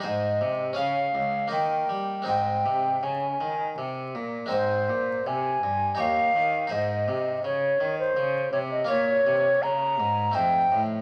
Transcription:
X:1
M:3/4
L:1/16
Q:1/4=82
K:Ab
V:1 name="Flute"
e4 f4 g4 | g4 a4 z4 | c4 a4 f4 | e4 d3 c3 d e |
d4 b4 g3 z |]
V:2 name="Harpsichord"
[A,EAc]4 [DAf]4 [B,Ee]4 | [A,CEe]12 | [A,CEc]8 [EGd]4 | [EAc]12 |
[B,Fd]8 [=A,Ec]4 |]
V:3 name="Harpsichord" clef=bass
A,,2 C,2 D,2 D,,2 E,2 G,2 | A,,2 C,2 D,2 E,2 C,2 B,,2 | A,,2 B,,2 C,2 G,,2 E,,2 E,2 | A,,2 C,2 D,2 E,2 D,2 C,2 |
B,,2 C,2 D,2 A,,2 F,,2 =A,,2 |]
V:4 name="Cello" clef=bass
A,,2 C,2 D,2 D,,2 E,2 G,2 | A,,2 C,2 D,2 E,2 C,2 B,,2 | A,,2 B,,2 C,2 G,,2 E,,2 E,2 | A,,2 C,2 D,2 E,2 D,2 C,2 |
B,,2 C,2 D,2 A,,2 F,,2 =A,,2 |]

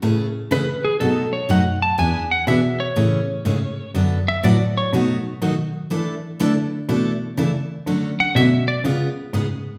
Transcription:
X:1
M:4/4
L:1/8
Q:"Swing" 1/4=122
K:A
V:1 name="Electric slide guitar"
z2 B G A c f a | g f e c4- c | z e d c z4 | z8 |
z f e d z4 |]
V:2 name="Steel-string acoustic guitar"
[C,E,A,CG] z [C,E,A,CG] z [B,,F,A,^DF] z [B,,F,A,DF] z | [E,B,DG] z [E,B,DG] z [C,E,A,CG] z [C,E,A,CG] z | [D,F,B,FA] z [D,F,B,FA] z [B,,F,A,^DF] z [B,,F,A,DF] z | [E,A,DEA] z [E,A,DEA] z [E,A,DEA] z [E,A,DEA] z |
[D,F,A,CF] z [D,F,A,CF] z [C,G,B,^EG] z [C,G,B,EG] z |]
V:3 name="Cello" clef=bass
A,,2 C,2 B,,2 F,,2 | E,,2 B,,2 A,,2 G,,2 | F,,2 A,,2 B,,2 ^D,2 | E,2 D,2 B,,2 C,2 |
D, D, B,,2 C,2 G,,2 |]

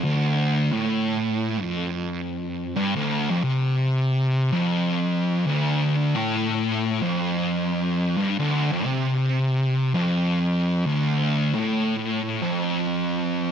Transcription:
X:1
M:4/4
L:1/16
Q:"Swing" 1/4=89
K:Dm
V:1 name="Distorted electric guitar" clef=bass
D,,4 A,,4- A,, F,,6- F,, | G,, D,,2 F,, C,6 F,,6 | D,,4 A,,4- A,, F,,6- F,, | G,, D,,2 F,, C,6 F,,6 |
D,,4 A,,4- A,, F,,6- F,, |]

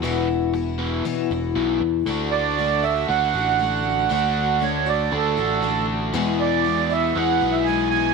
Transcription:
X:1
M:4/4
L:1/16
Q:1/4=118
K:Dlyd
V:1 name="Accordion"
z16 | z2 d4 e2 f8 | f4 c2 d2 A6 z2 | z2 d4 e2 f3 e g2 g2 |]
V:2 name="Twelve-string acoustic guitar"
[E,,B,,E,B,EF]4 [E,B,EF]4 [E,,B,,E,B,EF]2 [B,EF]6 | [D,A,DF]4 [D,A,DF]2 [A,DF]4 [A,DF]2 [D,A,DF]4 | [D,A,DF]4 [D,A,DF]2 [A,DF]4 [A,DF]2 [D,A,DF]4 | [E,,B,,E,G,B,E]4 [E,G,B,E]2 [E,G,B,E]4 [E,G,B,E]2 [E,G,B,E]4 |]
V:3 name="Overdriven electric guitar" clef=bass
[E,,B,,E,]2 [E,,B,,]2 [E,,B,,]2 [E,,B,,E,]2 [E,,B,,]2 [E,,B,,]2 [E,,B,,E,]2 [E,,B,,]2 | [D,A,DF]8 [D,A,DF]8 | [D,A,DF]8 [D,A,DF]8 | [E,,B,,E,G,B,G]8 [E,,B,,E,G,B,G]8 |]
V:4 name="Picked electric bass" clef=bass
E,,,8 z2 E,,,2 B,,,2 E,,2 | D,,8 D,,2 A,,,6 | D,,8 D,,2 A,,,6 | E,,8 E,,2 B,,,6 |]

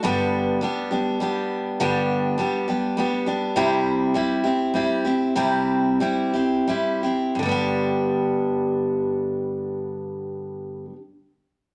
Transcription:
X:1
M:3/4
L:1/8
Q:1/4=96
K:G
V:1 name="Steel-string acoustic guitar"
[G,,D,G,B,DG]2 [G,B,DG] [G,B,DG] [G,B,DG]2 | [G,,D,G,B,DG]2 [G,B,DG] [G,B,DG] [G,B,DG] [G,B,DG] | [C,G,CEG]2 [G,CEG] [CEG] [G,CEG] [CEG] | [C,G,CEG]2 [G,CEG] [CEG] [G,CEG] [CEG] |
[G,,D,G,B,DG]6- | [G,,D,G,B,DG]6 |]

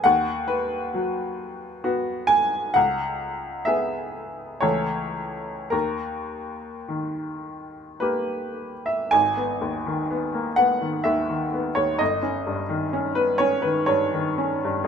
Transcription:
X:1
M:3/4
L:1/16
Q:1/4=63
K:G#m
V:1 name="Upright piano"
f2 B6 z2 g2 | f4 e4 c4 | A8 B3 e | g6 f2 e3 c |
d4- d B c B c4 |]
V:2 name="Upright piano" clef=bass
D,,4 F,4 [B,F]4 | C,,4 [B,G]4 [C,,E,=A,=A]4 | D,,4 D,4 [A,=G]4 | G,,, B, D,, D, B, A, B, D, D,, D, B, D,, |
=G,,, C =G,, D, C B, C D, G,, D, C G,, |]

